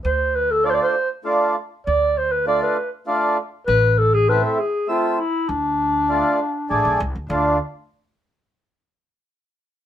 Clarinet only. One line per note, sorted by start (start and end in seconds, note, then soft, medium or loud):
0.05 0.37 C5 medium
0.36 0.53 B4 medium
0.52 0.67 A4 loud
0.66 0.72 D5 loud
0.70 0.76 C5 medium
0.74 0.81 D5 loud
0.82 1.09 C5 medium
1.86 2.19 D5 loud
2.18 2.33 C5 loud
2.32 2.47 B4 medium
2.48 2.61 D5 loud
2.62 2.90 B4 medium
3.67 4.00 B4 loud
3.98 4.15 A4 loud
4.14 4.31 G#4 loud
4.29 4.43 B4 loud
4.44 4.60 A4 medium
4.59 4.89 G#4 loud
4.89 5.20 F4 medium
5.18 5.50 E4 medium
5.49 7.00 D4 loud
7.29 7.58 D4 medium